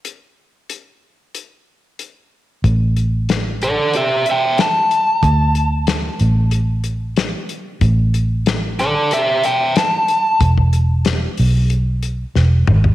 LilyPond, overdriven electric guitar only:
\new Staff \with { instrumentName = "Overdriven electric guitar" } { \time 4/4 \key d \dorian \tempo 4 = 93 r1 | r4. <a' d''>8 <g' e''>8 <e'' g''>8 a''4~ | a''2 r2 | r4. <a' d''>8 <g' e''>8 <e'' g''>8 a''4 |
r1 | }